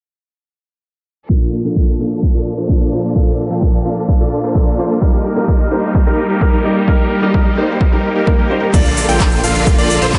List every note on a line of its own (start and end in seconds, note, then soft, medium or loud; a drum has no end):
1.29 1.61 A#2 medium
1.29 1.62 F3 medium
1.29 4.98 F3 medium
1.29 8.70 A#3 medium
1.29 1.62 A#3 medium
1.29 1.62 D4 medium
1.29 4.98 D4 medium
1.29 1.62 D4 medium
1.29 1.62 F4 medium
1.29 1.62 A4 medium
1.29 3.14 A4 medium
1.29 1.62 A4 medium
1.29 1.62 D5 medium
1.29 kick loud
1.64 1.96 A#2 medium
1.64 1.96 F3 medium
1.64 1.97 A#3 medium
1.64 1.97 D4 medium
1.64 1.97 F4 medium
1.64 1.97 A4 medium
1.64 1.97 G5 medium
1.76 kick loud
1.99 2.13 A#2 medium
1.99 2.13 F3 medium
1.99 2.13 A#3 medium
1.99 2.31 A#3 medium
1.99 2.31 D4 medium
1.99 2.13 D4 medium
1.99 2.32 F4 medium
1.99 2.31 A4 medium
1.99 2.13 A4 medium
1.99 2.31 F5 medium
2.23 kick loud
2.33 2.66 A#2 medium
2.33 2.66 F3 medium
2.33 2.66 A#3 medium
2.33 2.55 A#3 medium
2.33 2.55 D4 medium
2.33 2.66 D4 medium
2.33 2.55 F4 medium
2.33 2.55 A4 medium
2.33 2.67 A4 medium
2.33 2.55 D5 loud
2.58 2.78 A#3 medium
2.58 2.78 D4 medium
2.58 2.78 F4 medium
2.58 2.78 A4 medium
2.58 2.78 C5 loud
2.68 2.89 A#2 medium
2.68 2.89 F3 medium
2.68 2.90 A#3 medium
2.68 2.90 D4 medium
2.68 2.90 A4 medium
2.68 kick loud
2.81 3.13 A#3 medium
2.81 3.13 D4 medium
2.81 3.13 F4 medium
2.81 3.13 A4 medium
2.81 3.13 D5 medium
2.92 3.12 A#2 medium
2.92 3.12 F3 medium
2.92 3.12 A#3 medium
2.92 3.12 D4 medium
2.92 3.12 C5 medium
3.15 3.47 A#2 medium
3.15 3.48 F3 medium
3.15 3.48 A#3 medium
3.15 3.48 D4 medium
3.15 3.48 F4 medium
3.15 3.48 A4 loud
3.15 kick loud
3.50 3.82 A#2 medium
3.50 3.82 F3 medium
3.50 3.83 A#3 medium
3.50 3.83 D4 medium
3.50 3.83 F4 medium
3.50 3.83 A4 medium
3.50 3.83 G5 medium
3.62 kick loud
3.85 3.99 A#2 medium
3.85 3.99 F3 medium
3.85 3.99 A#3 medium
3.85 4.17 A#3 medium
3.85 4.17 D4 medium
3.85 3.99 D4 medium
3.85 4.17 F4 medium
3.85 4.17 A4 medium
3.85 3.99 A4 medium
3.85 4.17 F5 medium
4.09 kick loud
4.20 4.52 A#2 medium
4.20 4.52 F3 medium
4.20 4.52 A#3 medium
4.20 4.41 A#3 medium
4.20 4.41 D4 medium
4.20 4.52 D4 medium
4.20 4.41 F4 medium
4.20 4.41 A4 medium
4.20 4.53 A4 medium
4.20 4.41 D5 loud
4.43 4.64 A#3 medium
4.43 4.64 D4 medium
4.43 4.64 F4 medium
4.43 4.64 A4 medium
4.43 4.64 C5 loud
4.54 4.75 A#2 medium
4.54 4.75 F3 medium
4.54 4.76 A#3 medium
4.54 4.76 D4 medium
4.54 4.76 A4 medium
4.54 kick loud
4.67 4.99 A#3 medium
4.67 4.99 D4 medium
4.67 4.99 F4 medium
4.67 4.99 A4 medium
4.67 4.99 D5 medium
4.78 4.98 F3 medium
4.78 4.98 A#3 medium
4.78 4.98 D4 medium
4.78 4.98 C5 medium
5.01 5.33 G3 medium
5.01 8.70 G3 medium
5.01 5.34 A#3 medium
5.01 5.34 D#4 medium
5.01 6.86 D#4 medium
5.01 5.34 D#4 medium
5.01 5.34 A#4 medium
5.01 kick loud
5.36 5.68 G3 medium
5.36 5.69 A#3 medium
5.36 5.69 D#4 medium
5.36 5.69 G4 medium
5.36 5.69 A#4 medium
5.36 5.69 D#5 loud
5.48 kick loud
5.71 5.85 G3 medium
5.71 5.85 A#3 medium
5.71 6.04 D#4 medium
5.71 5.85 D#4 medium
5.71 6.04 G4 medium
5.71 5.85 A#4 medium
5.71 6.04 C5 medium
5.95 kick loud
6.06 6.38 G3 medium
6.06 6.38 A#3 medium
6.06 6.27 D#4 medium
6.06 6.39 D#4 medium
6.06 6.27 G4 medium
6.06 6.27 A#4 loud
6.06 6.39 A#4 medium
6.30 6.50 D#4 loud
6.30 6.50 G4 medium
6.30 6.50 A#4 loud
6.41 6.61 G3 medium
6.41 6.62 A#3 medium
6.41 6.62 D#4 medium
6.41 6.62 A#4 medium
6.41 kick loud
6.53 6.85 D#4 medium
6.53 6.85 G4 medium
6.53 6.85 A#4 loud
6.64 6.84 G3 medium
6.64 6.84 A#3 medium
6.64 6.84 D#4 medium
6.64 6.85 D#5 medium
6.87 7.19 G3 medium
6.87 7.20 A#3 medium
6.87 7.20 D#4 medium
6.87 7.20 G4 medium
6.87 7.20 A#4 medium
6.87 7.20 A#4 loud
6.87 kick loud
7.22 7.54 G3 medium
7.22 7.55 A#3 medium
7.22 7.55 D#4 medium
7.22 7.55 G4 medium
7.22 7.55 A#4 medium
7.22 7.55 D#5 loud
7.34 kick loud
7.57 7.71 G3 medium
7.57 7.71 A#3 medium
7.57 7.90 D#4 medium
7.57 7.71 D#4 medium
7.57 7.90 G4 medium
7.57 7.71 A#4 medium
7.57 7.90 C5 medium
7.81 kick loud
7.81 swell medium
7.92 8.24 G3 medium
7.92 8.24 A#3 medium
7.92 8.13 D#4 medium
7.92 8.24 D#4 medium
7.92 8.13 G4 medium
7.92 8.13 A#4 loud
7.92 8.25 A#4 medium
8.16 8.36 D#4 medium
8.16 8.36 G4 medium
8.16 8.36 A#4 loud
8.27 8.47 G3 medium
8.27 8.47 A#3 medium
8.27 8.47 D#4 medium
8.27 8.47 A#4 medium
8.27 kick loud
8.39 8.71 D#4 medium
8.39 8.71 G4 medium
8.39 8.71 A#4 loud
8.50 8.59 G3 medium
8.50 8.59 A#3 medium
8.50 8.59 D#4 medium
8.50 8.60 C5 medium
8.61 8.71 G3 medium
8.61 8.71 A#3 medium
8.61 8.71 D#4 medium
8.61 8.71 G4 medium
8.74 9.06 A#1 loud
8.74 10.19 D3 medium
8.74 9.06 A#3 medium
8.74 10.19 A#3 medium
8.74 9.06 D4 medium
8.74 9.06 F4 medium
8.74 10.19 F4 medium
8.74 9.06 A4 medium
8.74 10.19 A4 medium
8.74 9.06 D5 medium
8.74 kick loud
8.74 closed hi-hat loud
8.74 crash loud
8.74 sub drop medium
8.74 shaker soft
8.85 closed hi-hat soft
8.85 shaker soft
8.97 open hi-hat loud
8.97 shaker medium
9.09 9.41 A#1 loud
9.09 9.41 A#3 medium
9.09 9.41 D4 medium
9.09 9.41 F4 medium
9.09 9.41 A4 medium
9.09 9.41 G5 loud
9.09 closed hi-hat soft
9.09 shaker soft
9.20 kick loud
9.20 clap loud
9.20 closed hi-hat loud
9.20 shaker soft
9.32 closed hi-hat soft
9.32 shaker soft
9.43 9.76 A#1 medium
9.43 9.76 A#3 medium
9.43 9.76 D4 medium
9.43 9.76 F4 medium
9.43 9.76 A4 medium
9.43 9.76 F5 loud
9.43 9.76 F5 medium
9.43 open hi-hat loud
9.43 shaker medium
9.55 closed hi-hat soft
9.55 shaker soft
9.67 kick loud
9.67 closed hi-hat medium
9.67 shaker soft
9.78 9.99 A#1 loud
9.78 9.99 A#3 loud
9.78 9.99 D4 medium
9.78 9.99 F4 medium
9.78 9.99 A4 medium
9.78 9.99 D5 loud
9.78 closed hi-hat soft
9.78 shaker soft
9.90 open hi-hat loud
9.90 shaker medium
10.02 10.19 A#1 loud
10.02 10.19 A#3 loud
10.02 10.19 D4 medium
10.02 10.19 F4 medium
10.02 10.19 A4 medium
10.02 10.19 C5 loud
10.02 closed hi-hat soft
10.02 shaker soft
10.13 kick loud
10.13 clap loud
10.13 closed hi-hat medium
10.13 shaker soft